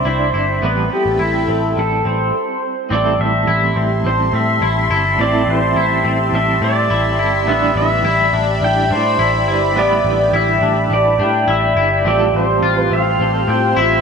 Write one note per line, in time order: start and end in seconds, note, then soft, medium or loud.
0.00 0.63 G3 medium
0.00 0.61 C4 medium
0.00 0.64 B4 medium
0.00 0.61 E5 medium
0.00 0.58 B5 medium
0.00 0.61 D6 medium
0.05 0.31 C2 medium
0.05 0.63 D4 medium
0.05 0.33 E4 medium
0.05 0.63 E4 medium
0.05 0.65 C5 medium
0.34 0.59 G1 medium
0.34 0.62 E4 medium
0.62 0.88 A1 medium
0.62 0.91 A2 medium
0.62 0.91 E3 medium
0.62 0.91 G3 medium
0.62 1.19 B3 medium
0.62 0.91 C4 medium
0.62 0.90 E4 medium
0.62 2.32 A4 medium
0.62 0.89 B4 medium
0.62 0.90 B4 medium
0.62 2.32 G5 medium
0.62 2.32 A5 medium
0.62 2.32 B5 medium
0.90 1.75 G3 soft
0.90 1.76 C4 soft
0.90 1.78 E4 soft
0.90 1.21 G4 medium
0.90 1.76 B4 soft
1.06 1.18 A1 medium
1.19 1.45 A1 medium
1.19 1.48 E4 medium
1.19 1.80 E4 medium
1.48 1.73 A1 medium
1.48 2.04 C4 medium
1.75 2.02 A1 medium
1.75 2.85 G3 soft
1.75 2.85 C4 soft
1.75 2.85 E4 medium
1.75 2.60 A4 medium
1.75 2.35 B4 soft
2.05 2.31 A1 medium
2.05 2.34 C4 medium
2.05 2.94 C5 medium
2.89 3.16 A1 loud
2.89 4.04 A2 medium
2.89 5.19 E3 medium
2.89 4.04 G3 medium
2.89 3.48 C4 medium
2.89 4.05 C4 medium
2.89 14.01 G4 medium
2.89 3.21 D5 medium
2.89 12.01 E5 medium
2.89 7.44 A5 medium
2.89 7.44 C6 medium
2.94 4.07 E4 medium
2.94 4.07 A4 medium
3.20 3.45 A1 medium
3.20 4.02 E5 loud
3.48 3.73 A1 medium
3.48 3.76 E4 medium
3.76 4.01 A1 loud
3.76 4.32 C4 medium
4.04 4.30 A1 loud
4.04 4.93 G3 medium
4.04 4.91 C4 medium
4.04 4.91 E4 soft
4.04 4.35 C5 medium
4.08 4.89 A4 medium
4.33 4.58 A2 loud
4.33 4.62 C4 medium
4.33 5.21 E5 loud
4.62 4.87 A1 loud
4.62 4.89 E4 medium
4.90 5.16 G1 medium
4.90 5.19 G3 soft
4.90 5.20 C4 soft
4.90 5.19 E4 medium
4.90 5.20 E4 soft
4.90 5.19 A4 medium
5.18 5.44 A1 loud
5.18 6.33 A2 medium
5.18 7.47 E3 medium
5.18 6.32 G3 medium
5.18 5.76 C4 medium
5.18 6.33 C4 medium
5.18 5.50 D5 medium
5.23 6.34 E4 medium
5.23 6.35 A4 medium
5.47 5.73 A1 loud
5.47 6.37 C5 medium
5.76 6.02 A1 loud
5.76 6.05 E4 medium
6.05 6.30 A1 loud
6.05 6.61 C4 medium
6.32 6.58 A1 medium
6.32 7.21 G3 medium
6.32 7.20 C4 medium
6.32 7.20 E4 medium
6.32 7.17 A4 medium
6.32 6.64 E5 medium
6.61 6.87 A2 loud
6.61 6.91 C4 medium
6.61 7.49 D5 medium
6.90 7.19 A1 medium
6.90 7.18 E4 medium
7.18 7.47 G1 medium
7.18 7.47 G3 soft
7.18 7.49 C4 soft
7.18 7.48 E4 medium
7.18 7.47 A4 medium
7.46 7.73 A1 loud
7.46 8.61 A2 medium
7.46 8.62 D3 medium
7.46 8.60 G3 medium
7.46 8.05 B3 medium
7.46 12.01 D5 medium
7.46 7.76 E5 medium
7.46 12.01 B5 medium
7.50 8.61 D4 medium
7.50 8.62 E4 medium
7.50 8.64 B4 medium
7.76 8.01 A1 medium
7.76 8.64 E5 loud
8.04 8.30 A1 loud
8.04 8.34 E4 medium
8.33 8.59 A1 medium
8.33 8.89 D4 medium
8.61 8.92 A1 medium
8.61 9.50 G3 medium
8.61 9.48 D4 medium
8.61 9.47 E4 medium
8.61 8.93 G5 loud
8.90 9.16 A2 loud
8.90 9.19 D4 medium
8.90 9.79 C5 medium
9.19 9.47 A1 medium
9.19 9.47 E4 medium
9.47 9.76 G1 medium
9.47 9.77 D4 soft
9.47 9.77 E4 medium
9.47 9.76 B4 medium
9.51 9.76 G3 soft
9.74 10.01 A1 medium
9.74 10.90 A2 medium
9.74 10.91 D3 medium
9.74 10.89 G3 medium
9.74 10.34 B3 medium
9.74 10.90 D4 medium
9.79 10.91 E4 medium
9.79 10.93 B4 medium
9.79 10.37 D5 medium
10.05 10.30 A1 loud
10.33 10.59 A1 medium
10.33 10.62 E4 medium
10.33 10.93 E5 loud
10.62 10.87 A1 medium
10.62 11.18 D4 medium
10.90 11.20 A1 medium
10.90 11.79 G3 medium
10.90 11.77 D4 soft
10.90 11.76 E4 medium
10.90 11.75 B4 medium
10.90 11.19 D5 medium
11.19 11.44 A2 loud
11.19 11.48 D4 medium
11.19 11.50 G5 medium
11.48 11.73 A1 medium
11.48 11.75 E4 medium
11.48 12.08 E5 loud
11.76 12.01 G1 medium
11.76 12.06 G3 soft
11.76 12.06 D4 medium
11.76 12.05 E4 medium
11.76 12.06 E4 medium
11.76 12.05 B4 soft
12.04 12.30 A1 medium
12.04 13.19 A2 medium
12.04 13.20 F3 medium
12.04 13.18 G3 medium
12.04 12.62 C4 medium
12.04 13.19 C4 medium
12.04 14.01 F4 medium
12.04 14.01 C5 medium
12.04 12.36 D5 loud
12.04 14.01 C6 medium
12.09 13.20 F4 medium
12.09 13.21 A4 medium
12.34 12.59 A1 medium
12.34 12.78 C5 medium
12.62 12.88 A1 medium
12.62 12.91 F4 medium
12.78 12.94 B4 medium
12.91 13.16 A1 medium
12.91 13.47 C4 medium
12.91 13.51 F5 medium
13.18 13.45 A1 medium
13.18 14.01 G3 soft
13.18 14.01 C4 medium
13.18 14.01 F4 medium
13.18 14.01 A4 medium
13.48 13.73 A2 loud
13.48 13.77 C4 medium
13.48 13.78 G5 medium
13.76 14.01 A1 medium
13.76 14.01 E4 loud
13.76 14.01 E5 loud